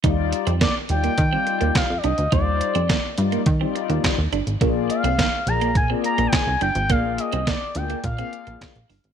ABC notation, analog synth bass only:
X:1
M:4/4
L:1/16
Q:1/4=105
K:Eb
V:1 name="Analog synth bass" clef=bass
E,,3 F,,2 z E,,2 E,2 z E,, z F,, C,, D,, | E,,3 F,,2 z G,,2 E,2 z E,, z E,, G,,, A,,, | B,,,3 C,,2 z B,,,2 B,,2 z B,,, z C,, G,,, A,,, | B,,,3 C,,2 z D,,2 B,,2 z B,,, z B,,, G,,, A,,, |]